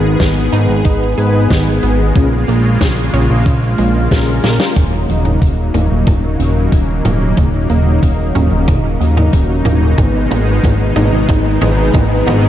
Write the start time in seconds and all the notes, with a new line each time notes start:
Already playing: G#1 D#3 G#3 B3 D#4 G#4 B4
0.20 G#1 D#3, kick, snare, closed hi-hat
0.53 G#1 D#4, closed hi-hat
0.69 G#1
0.84 G#1 D#4, kick, closed hi-hat
1.18 G#1 B3 D#4 G#4 B4, closed hi-hat
1.50 G#1 D#3, kick, snare, closed hi-hat
1.83 G#1 B3, closed hi-hat
2.15 A#1 C#3 A#3 C#4 F4 G#4 A#4, kick, closed hi-hat
2.48 A#1 A#3, closed hi-hat
2.81 A#1 C#3, kick, snare, closed hi-hat
3.13 A#1 C#4, closed hi-hat
3.30 A#1
3.46 A#1 C#3, kick, closed hi-hat
3.78 A#1 G#3, closed hi-hat
4.11 A#1 C#3 C#4 F4 G#4 A#4, kick, snare, closed hi-hat
4.43 A#1 A#3, snare, closed hi-hat
4.60 snare
4.76 D#1 C#3 F#3 A#3 C#4 D#4 F#4 A#4, kick, closed hi-hat, mid tom
5.09 D#1 F#3, closed hi-hat
5.25 mid tom
5.42 D#1 C#3, kick, closed hi-hat
5.74 D#1 A#3, closed hi-hat, mid tom
5.91 D#1
6.07 D#1 A#3, kick, closed hi-hat, mid tom
6.39 D#1 C#4 D#4 F#4 A#4, closed hi-hat
6.72 D#1 C#3, kick, closed hi-hat
7.05 D#1 F#3, closed hi-hat, mid tom
7.37 D#1 C#3 C#4 D#4 F#4 G#4, kick, closed hi-hat, mid tom
7.69 D#1 A#3, closed hi-hat
8.03 D#1 C#3, kick, closed hi-hat
8.35 D#1 C#4, closed hi-hat, mid tom
8.52 D#1
8.68 D#1 C#3, kick, closed hi-hat, mid tom
9.01 D#1 F#3, closed hi-hat
9.17 mid tom
9.33 D#1 C#3 C#4 D#4 F#4 A#4, kick, closed hi-hat
9.65 D#1 A#3, closed hi-hat, mid tom
9.98 G#1 B2 D#3 G#3 B3 D#4 G#4 B4, kick, closed hi-hat, mid tom
10.31 G#1 B3, closed hi-hat, mid tom
10.63 G#1 D#3, kick, closed hi-hat, mid tom
10.96 G#1 D#4, closed hi-hat, mid tom
11.12 G#1
11.29 G#1 D#4, kick, closed hi-hat, mid tom
11.61 G#1 B3 D#4 G#4 B4, closed hi-hat, mid tom
11.93 G#1 D#3, kick, closed hi-hat, mid tom
12.26 G#1 B3, closed hi-hat, mid tom